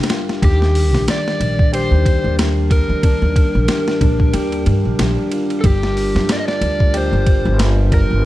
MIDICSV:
0, 0, Header, 1, 6, 480
1, 0, Start_track
1, 0, Tempo, 652174
1, 311, Time_signature, 4, 2, 24, 8
1, 6072, End_track
2, 0, Start_track
2, 0, Title_t, "Electric slide guitar"
2, 0, Program_c, 0, 29
2, 328, Note_on_c, 0, 67, 92
2, 770, Note_off_c, 0, 67, 0
2, 811, Note_on_c, 0, 74, 111
2, 1283, Note_off_c, 0, 74, 0
2, 1286, Note_on_c, 0, 72, 93
2, 1729, Note_off_c, 0, 72, 0
2, 2001, Note_on_c, 0, 70, 95
2, 3406, Note_off_c, 0, 70, 0
2, 4127, Note_on_c, 0, 69, 66
2, 4161, Note_off_c, 0, 69, 0
2, 4163, Note_on_c, 0, 67, 93
2, 4651, Note_off_c, 0, 67, 0
2, 4653, Note_on_c, 0, 74, 112
2, 4703, Note_off_c, 0, 74, 0
2, 4707, Note_on_c, 0, 75, 92
2, 4758, Note_off_c, 0, 75, 0
2, 4768, Note_on_c, 0, 74, 107
2, 5130, Note_off_c, 0, 74, 0
2, 5131, Note_on_c, 0, 72, 87
2, 5571, Note_off_c, 0, 72, 0
2, 5843, Note_on_c, 0, 70, 98
2, 6072, Note_off_c, 0, 70, 0
2, 6072, End_track
3, 0, Start_track
3, 0, Title_t, "Felt piano"
3, 0, Program_c, 1, 0
3, 0, Control_c, 1, 64, 127
3, 0, Note_on_c, 1, 62, 101
3, 0, Note_on_c, 1, 67, 76
3, 69, Note_on_c, 1, 65, 85
3, 290, Note_off_c, 1, 65, 0
3, 309, Note_off_c, 1, 67, 0
3, 309, Note_on_c, 1, 67, 99
3, 321, Control_c, 1, 64, 0
3, 323, Note_off_c, 1, 62, 0
3, 455, Control_c, 1, 64, 127
3, 1250, Note_off_c, 1, 67, 0
3, 1272, Note_on_c, 1, 67, 107
3, 1731, Note_off_c, 1, 67, 0
3, 1750, Note_on_c, 1, 67, 73
3, 1970, Note_off_c, 1, 67, 0
3, 1991, Note_on_c, 1, 70, 75
3, 2210, Note_off_c, 1, 70, 0
3, 2232, Note_on_c, 1, 62, 92
3, 2691, Note_off_c, 1, 62, 0
3, 2711, Note_on_c, 1, 67, 77
3, 2940, Note_off_c, 1, 67, 0
3, 2951, Note_on_c, 1, 62, 102
3, 3104, Note_off_c, 1, 62, 0
3, 3189, Note_on_c, 1, 67, 103
3, 3650, Note_off_c, 1, 67, 0
3, 3671, Note_on_c, 1, 67, 69
3, 3891, Note_off_c, 1, 67, 0
3, 3912, Note_on_c, 1, 65, 74
3, 4131, Note_off_c, 1, 65, 0
3, 4150, Note_on_c, 1, 67, 97
3, 4161, Control_c, 1, 64, 0
3, 4272, Control_c, 1, 64, 127
3, 5090, Note_off_c, 1, 67, 0
3, 5107, Note_on_c, 1, 67, 105
3, 5568, Note_off_c, 1, 67, 0
3, 5588, Note_on_c, 1, 67, 72
3, 5809, Note_off_c, 1, 67, 0
3, 5834, Note_on_c, 1, 70, 80
3, 6052, Note_off_c, 1, 70, 0
3, 6072, End_track
4, 0, Start_track
4, 0, Title_t, "Analog synth pad"
4, 0, Program_c, 2, 89
4, 0, Note_on_c, 2, 55, 83
4, 0, Note_on_c, 2, 62, 73
4, 0, Note_on_c, 2, 67, 77
4, 0, Note_on_c, 2, 70, 87
4, 293, Note_off_c, 2, 67, 0
4, 317, Note_on_c, 2, 51, 77
4, 4124, Note_off_c, 2, 51, 0
4, 4151, Note_on_c, 2, 65, 73
4, 6072, Note_off_c, 2, 55, 0
4, 6072, Note_off_c, 2, 62, 0
4, 6072, Note_off_c, 2, 65, 0
4, 6072, Note_off_c, 2, 70, 0
4, 6072, End_track
5, 0, Start_track
5, 0, Title_t, "Upright bass"
5, 0, Program_c, 3, 32
5, 312, Note_on_c, 3, 39, 102
5, 691, Note_off_c, 3, 39, 0
5, 691, Note_on_c, 3, 34, 88
5, 779, Note_off_c, 3, 34, 0
5, 1032, Note_on_c, 3, 34, 83
5, 1383, Note_off_c, 3, 34, 0
5, 1407, Note_on_c, 3, 39, 88
5, 1615, Note_off_c, 3, 39, 0
5, 1651, Note_on_c, 3, 39, 91
5, 2104, Note_off_c, 3, 39, 0
5, 2129, Note_on_c, 3, 39, 87
5, 2336, Note_off_c, 3, 39, 0
5, 2370, Note_on_c, 3, 39, 91
5, 2613, Note_on_c, 3, 34, 86
5, 2624, Note_off_c, 3, 39, 0
5, 2700, Note_off_c, 3, 34, 0
5, 2950, Note_on_c, 3, 34, 90
5, 3166, Note_off_c, 3, 34, 0
5, 3193, Note_on_c, 3, 39, 87
5, 3429, Note_off_c, 3, 39, 0
5, 3434, Note_on_c, 3, 43, 105
5, 3554, Note_off_c, 3, 43, 0
5, 3570, Note_on_c, 3, 34, 89
5, 3659, Note_off_c, 3, 34, 0
5, 3672, Note_on_c, 3, 34, 99
5, 3793, Note_off_c, 3, 34, 0
5, 4151, Note_on_c, 3, 31, 101
5, 4527, Note_on_c, 3, 43, 88
5, 4538, Note_off_c, 3, 31, 0
5, 4617, Note_off_c, 3, 43, 0
5, 4867, Note_on_c, 3, 38, 88
5, 5221, Note_off_c, 3, 38, 0
5, 5245, Note_on_c, 3, 31, 88
5, 5454, Note_off_c, 3, 31, 0
5, 5486, Note_on_c, 3, 31, 96
5, 5941, Note_off_c, 3, 31, 0
5, 5967, Note_on_c, 3, 31, 83
5, 6072, Note_off_c, 3, 31, 0
5, 6072, End_track
6, 0, Start_track
6, 0, Title_t, "Drums"
6, 24, Note_on_c, 9, 51, 72
6, 27, Note_on_c, 9, 38, 87
6, 70, Note_off_c, 9, 51, 0
6, 70, Note_on_c, 9, 51, 79
6, 73, Note_off_c, 9, 38, 0
6, 73, Note_on_c, 9, 38, 109
6, 144, Note_off_c, 9, 51, 0
6, 147, Note_off_c, 9, 38, 0
6, 216, Note_on_c, 9, 38, 50
6, 290, Note_off_c, 9, 38, 0
6, 312, Note_on_c, 9, 36, 109
6, 314, Note_on_c, 9, 51, 87
6, 386, Note_off_c, 9, 36, 0
6, 388, Note_off_c, 9, 51, 0
6, 457, Note_on_c, 9, 38, 42
6, 531, Note_off_c, 9, 38, 0
6, 553, Note_on_c, 9, 46, 84
6, 627, Note_off_c, 9, 46, 0
6, 695, Note_on_c, 9, 38, 53
6, 769, Note_off_c, 9, 38, 0
6, 794, Note_on_c, 9, 51, 88
6, 797, Note_on_c, 9, 38, 113
6, 867, Note_off_c, 9, 51, 0
6, 870, Note_off_c, 9, 38, 0
6, 940, Note_on_c, 9, 38, 47
6, 1013, Note_off_c, 9, 38, 0
6, 1035, Note_on_c, 9, 51, 75
6, 1108, Note_off_c, 9, 51, 0
6, 1172, Note_on_c, 9, 36, 93
6, 1246, Note_off_c, 9, 36, 0
6, 1277, Note_on_c, 9, 51, 84
6, 1351, Note_off_c, 9, 51, 0
6, 1513, Note_on_c, 9, 36, 91
6, 1517, Note_on_c, 9, 51, 67
6, 1587, Note_off_c, 9, 36, 0
6, 1590, Note_off_c, 9, 51, 0
6, 1757, Note_on_c, 9, 51, 87
6, 1760, Note_on_c, 9, 38, 116
6, 1831, Note_off_c, 9, 51, 0
6, 1834, Note_off_c, 9, 38, 0
6, 1992, Note_on_c, 9, 36, 93
6, 1993, Note_on_c, 9, 51, 62
6, 2066, Note_off_c, 9, 36, 0
6, 2067, Note_off_c, 9, 51, 0
6, 2231, Note_on_c, 9, 36, 116
6, 2232, Note_on_c, 9, 51, 92
6, 2305, Note_off_c, 9, 36, 0
6, 2306, Note_off_c, 9, 51, 0
6, 2472, Note_on_c, 9, 36, 100
6, 2475, Note_on_c, 9, 51, 70
6, 2545, Note_off_c, 9, 36, 0
6, 2548, Note_off_c, 9, 51, 0
6, 2710, Note_on_c, 9, 51, 88
6, 2713, Note_on_c, 9, 38, 114
6, 2783, Note_off_c, 9, 51, 0
6, 2786, Note_off_c, 9, 38, 0
6, 2853, Note_on_c, 9, 38, 54
6, 2927, Note_off_c, 9, 38, 0
6, 2951, Note_on_c, 9, 36, 99
6, 2953, Note_on_c, 9, 51, 72
6, 3025, Note_off_c, 9, 36, 0
6, 3026, Note_off_c, 9, 51, 0
6, 3089, Note_on_c, 9, 36, 86
6, 3163, Note_off_c, 9, 36, 0
6, 3191, Note_on_c, 9, 51, 93
6, 3264, Note_off_c, 9, 51, 0
6, 3329, Note_on_c, 9, 51, 42
6, 3403, Note_off_c, 9, 51, 0
6, 3431, Note_on_c, 9, 51, 67
6, 3505, Note_off_c, 9, 51, 0
6, 3672, Note_on_c, 9, 51, 94
6, 3675, Note_on_c, 9, 38, 112
6, 3746, Note_off_c, 9, 51, 0
6, 3749, Note_off_c, 9, 38, 0
6, 3912, Note_on_c, 9, 51, 72
6, 3986, Note_off_c, 9, 51, 0
6, 4050, Note_on_c, 9, 51, 42
6, 4124, Note_off_c, 9, 51, 0
6, 4149, Note_on_c, 9, 51, 91
6, 4151, Note_on_c, 9, 36, 108
6, 4223, Note_off_c, 9, 51, 0
6, 4224, Note_off_c, 9, 36, 0
6, 4294, Note_on_c, 9, 38, 46
6, 4367, Note_off_c, 9, 38, 0
6, 4393, Note_on_c, 9, 46, 83
6, 4467, Note_off_c, 9, 46, 0
6, 4533, Note_on_c, 9, 38, 57
6, 4607, Note_off_c, 9, 38, 0
6, 4629, Note_on_c, 9, 51, 89
6, 4632, Note_on_c, 9, 38, 115
6, 4703, Note_off_c, 9, 51, 0
6, 4706, Note_off_c, 9, 38, 0
6, 4771, Note_on_c, 9, 38, 49
6, 4845, Note_off_c, 9, 38, 0
6, 4869, Note_on_c, 9, 51, 74
6, 4942, Note_off_c, 9, 51, 0
6, 5007, Note_on_c, 9, 36, 84
6, 5080, Note_off_c, 9, 36, 0
6, 5107, Note_on_c, 9, 51, 84
6, 5181, Note_off_c, 9, 51, 0
6, 5347, Note_on_c, 9, 51, 65
6, 5348, Note_on_c, 9, 36, 89
6, 5420, Note_off_c, 9, 51, 0
6, 5422, Note_off_c, 9, 36, 0
6, 5589, Note_on_c, 9, 51, 85
6, 5592, Note_on_c, 9, 38, 125
6, 5662, Note_off_c, 9, 51, 0
6, 5665, Note_off_c, 9, 38, 0
6, 5829, Note_on_c, 9, 36, 94
6, 5829, Note_on_c, 9, 51, 67
6, 5902, Note_off_c, 9, 36, 0
6, 5903, Note_off_c, 9, 51, 0
6, 6072, End_track
0, 0, End_of_file